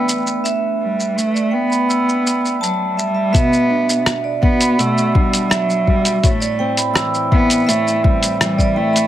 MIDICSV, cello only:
0, 0, Header, 1, 2, 480
1, 0, Start_track
1, 0, Tempo, 722892
1, 299, Time_signature, 4, 2, 24, 8
1, 6024, End_track
2, 0, Start_track
2, 0, Title_t, "Cello"
2, 0, Program_c, 0, 42
2, 0, Note_on_c, 0, 59, 89
2, 183, Note_off_c, 0, 59, 0
2, 539, Note_on_c, 0, 55, 75
2, 776, Note_on_c, 0, 57, 89
2, 786, Note_off_c, 0, 55, 0
2, 1018, Note_on_c, 0, 59, 98
2, 1028, Note_off_c, 0, 57, 0
2, 1738, Note_off_c, 0, 59, 0
2, 1742, Note_on_c, 0, 54, 72
2, 1970, Note_on_c, 0, 55, 87
2, 1980, Note_off_c, 0, 54, 0
2, 2206, Note_on_c, 0, 59, 107
2, 2216, Note_off_c, 0, 55, 0
2, 2693, Note_off_c, 0, 59, 0
2, 2937, Note_on_c, 0, 59, 105
2, 3186, Note_on_c, 0, 57, 102
2, 3196, Note_off_c, 0, 59, 0
2, 3423, Note_on_c, 0, 55, 89
2, 3433, Note_off_c, 0, 57, 0
2, 3669, Note_on_c, 0, 54, 94
2, 3679, Note_off_c, 0, 55, 0
2, 3910, Note_on_c, 0, 55, 92
2, 3920, Note_off_c, 0, 54, 0
2, 4142, Note_off_c, 0, 55, 0
2, 4146, Note_on_c, 0, 57, 89
2, 4596, Note_off_c, 0, 57, 0
2, 4862, Note_on_c, 0, 59, 107
2, 5100, Note_on_c, 0, 57, 106
2, 5110, Note_off_c, 0, 59, 0
2, 5345, Note_on_c, 0, 55, 89
2, 5355, Note_off_c, 0, 57, 0
2, 5582, Note_off_c, 0, 55, 0
2, 5591, Note_on_c, 0, 55, 91
2, 5826, Note_on_c, 0, 57, 98
2, 5836, Note_off_c, 0, 55, 0
2, 6024, Note_off_c, 0, 57, 0
2, 6024, End_track
0, 0, End_of_file